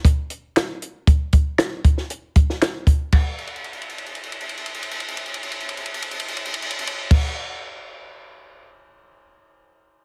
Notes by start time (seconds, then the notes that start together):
0.05 kick, closed hi-hat
0.30 closed hi-hat
0.56 finger snap, snare, closed hi-hat
0.82 closed hi-hat
1.07 kick, closed hi-hat
1.32 kick, closed hi-hat
1.58 finger snap, snare, closed hi-hat
1.84 kick, closed hi-hat
1.98 snare
2.10 closed hi-hat
2.36 kick, closed hi-hat
2.50 snare
2.62 finger snap, snare, closed hi-hat
2.87 kick, closed hi-hat
3.12 finger snap, kick, crash
3.38 crash
3.47 ride
3.56 crash
3.64 ride
3.73 crash
3.82 ride
3.90 crash
3.98 ride
4.06 crash
4.15 ride
4.24 crash
4.32 ride
4.41 crash
4.49 ride
4.58 crash
4.66 ride
4.74 crash
4.83 ride
4.91 crash
5.00 ride
5.08 crash
5.17 ride
5.26 crash
5.34 ride
5.43 crash
5.51 ride
5.60 crash
5.69 ride
5.77 crash
5.86 ride
5.94 crash
6.02 ride
6.11 crash
6.20 ride
6.28 crash
6.37 ride
6.45 crash
6.54 ride
6.62 crash
6.70 ride
6.79 crash
6.87 ride
7.11 kick, crash